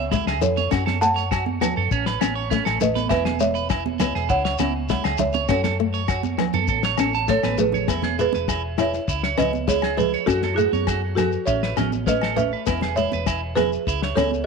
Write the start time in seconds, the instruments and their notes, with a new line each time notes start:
Already playing: fingered electric bass C#2, marimba C#5 E5
0.12 nylon-string guitar G#3, clean electric guitar E4, kick, snare, shekere
0.26 fingered electric bass C#2, clean electric guitar G#4, snare, low agogo, shekere
0.41 fingered electric bass F2, nylon-string guitar E3, marimba A4 C#5, low conga, shekere
0.57 clean electric guitar C#5, high conga, shekere
0.71 fingered electric bass F#2, nylon-string guitar C#4, clean electric guitar F#4, kick, snare, low agogo, shekere
0.86 clean electric guitar A4, snare, high conga
1.01 nylon-string guitar A3, marimba F#5 A5, shekere
1.16 clean electric guitar C#5, snare, shekere
1.31 clean electric guitar F#4, kick, snare, low agogo, shekere
1.46 high conga
1.61 fingered electric bass D#2, nylon-string guitar B3, clean electric guitar F#4, snare, low conga, low agogo, shekere
1.77 fingered electric bass F#2, clean electric guitar A4
1.91 fingered electric bass A1, clean electric guitar C#4, kick, shekere
2.06 clean electric guitar B4, snare
2.21 fingered electric bass A1, clean electric guitar C#4, nylon-string guitar C#4, snare, high conga, low agogo, shekere
2.35 clean electric guitar C#5
2.50 nylon-string guitar A3, clean electric guitar C#4, kick, snare, shekere
2.65 fingered electric bass A1, clean electric guitar A4, snare, low agogo, shekere
2.81 fingered electric bass A1, nylon-string guitar A3, marimba B4 D#5, low conga, shekere
2.95 clean electric guitar B4, snare, high conga, shekere
3.09 fingered electric bass E1, nylon-string guitar B3, clean electric guitar E4, marimba B4 E5, kick, snare, low agogo, shekere
3.25 clean electric guitar G#4, snare, high conga
3.40 nylon-string guitar G#3, marimba C#5 E5, shekere
3.55 clean electric guitar B4, shekere
3.69 clean electric guitar E4, kick, snare, low agogo, shekere
3.86 high conga
4.00 fingered electric bass C#2, nylon-string guitar B3, clean electric guitar E4, snare, low conga, low agogo, shekere
4.15 fingered electric bass E1, clean electric guitar G#4, snare
4.29 fingered electric bass C#2, clean electric guitar E4, marimba C#5 F#5, kick, shekere
4.45 clean electric guitar C#5, snare
4.58 fingered electric bass C#2, nylon-string guitar C#4, clean electric guitar E4, snare, high conga, low agogo, shekere
4.89 nylon-string guitar G#3, clean electric guitar E4, kick, snare, shekere
5.04 fingered electric bass C#2, clean electric guitar G#4, snare, low agogo, shekere
5.18 fingered electric bass C#2, nylon-string guitar G#3, marimba C#5 E5, low conga, shekere
5.33 clean electric guitar C#5, high conga, shekere
5.48 fingered electric bass F#2, nylon-string guitar C#4, clean electric guitar F#4, marimba A4 C#5, kick, snare, low agogo, shekere
5.64 clean electric guitar A4, snare, high conga, shekere
5.80 nylon-string guitar A3
5.94 clean electric guitar C#5, shekere
6.08 clean electric guitar F#4, kick, snare, low agogo, shekere
6.23 high conga, shekere
6.38 fingered electric bass D#2, nylon-string guitar B3, muted clean electric guitar stroke, snare, low conga, low agogo
6.53 fingered electric bass F#2, clean electric guitar A4, high conga, low conga, shekere
6.67 fingered electric bass A1, clean electric guitar A4, kick, shekere
6.83 clean electric guitar C#5, snare, shekere
6.97 fingered electric bass A1, nylon-string guitar C#4, clean electric guitar A4, snare, high conga, low agogo, shekere
7.14 clean electric guitar A5, shekere
7.28 nylon-string guitar A3, clean electric guitar A4, marimba A4 C#5, kick, snare, shekere
7.43 fingered electric bass A1, clean electric guitar B4, snare, high conga, low agogo, shekere
7.58 fingered electric bass A1, nylon-string guitar A3, marimba G#4 B4, low conga, shekere
7.72 clean electric guitar C#5, low conga, shekere
7.88 fingered electric bass E1, nylon-string guitar B3, clean electric guitar E4, kick, snare, low agogo, shekere
8.02 clean electric guitar G#4, snare, high conga
8.19 nylon-string guitar G#3, clean electric guitar E4, marimba G#4 B4, shekere
8.33 fingered electric bass E1, clean electric guitar B4, snare, high conga, shekere
8.48 clean electric guitar E4, kick, snare, low agogo, shekere
8.78 nylon-string guitar E4, clean electric guitar E4, marimba C#5 E5, snare, low agogo, shekere
8.93 snare, shekere
9.08 fingered electric bass C#2, clean electric guitar E4, kick, shekere
9.23 clean electric guitar C#5, snare
9.37 fingered electric bass C#2, nylon-string guitar C#4, clean electric guitar E4, marimba B4 D#5, snare, high conga, low conga, low agogo, shekere
9.53 high conga, shekere
9.68 nylon-string guitar G#3, clean electric guitar E4, marimba G#4 C#5, kick, snare, shekere
9.82 clean electric guitar G#4, snare, low agogo
9.97 nylon-string guitar G#3, clean electric guitar E4, marimba G#4 B4, low conga, shekere
10.13 clean electric guitar C#5, snare
10.26 fingered electric bass F#2, nylon-string guitar C#4, marimba F#4 A4, clean electric guitar F#4, kick, snare, low agogo, shekere
10.42 clean electric guitar A4, snare, high conga
10.54 nylon-string guitar A3, marimba E4 G#4, clean electric guitar F#4, shekere
10.72 fingered electric bass F#2, clean electric guitar C#5, high conga, shekere
10.87 clean electric guitar F#4, kick, snare, low agogo, shekere
11.15 nylon-string guitar B3, marimba F#4 A4, clean electric guitar F#4, snare, low conga, low agogo, shekere
11.32 shekere
11.46 fingered electric bass A1, clean electric guitar C#4, marimba C#5 E5, kick, shekere
11.63 clean electric guitar B4, snare
11.77 fingered electric bass A1, nylon-string guitar C#4, clean electric guitar C#4, snare, high conga, low conga, low agogo, shekere
11.92 high conga, shekere
12.07 nylon-string guitar A3, clean electric guitar C#4, marimba B4 D#5, kick, snare, shekere
12.22 clean electric guitar A4, snare, low agogo
12.36 nylon-string guitar A3, clean electric guitar C#4, marimba B4 E5, low conga, shekere
12.53 clean electric guitar B4
12.66 fingered electric bass E1, nylon-string guitar B3, clean electric guitar E4, kick, snare, low agogo, shekere
12.81 clean electric guitar G#4, snare, high conga
12.96 nylon-string guitar G#3, clean electric guitar E4, marimba C#5 E5, shekere
13.12 fingered electric bass E1, clean electric guitar B4, high conga, shekere
13.26 clean electric guitar E4, kick, snare, low agogo, shekere
13.56 nylon-string guitar B3, clean electric guitar E4, marimba G#4 B4, snare, low conga, low agogo, shekere
13.73 shekere
13.87 fingered electric bass C#2, clean electric guitar E4, kick, shekere
14.02 clean electric guitar C#5, snare
14.16 fingered electric bass C#2, nylon-string guitar C#4, clean electric guitar E4, marimba A4 C#5, snare, high conga, low conga, low agogo, shekere
14.31 high conga, shekere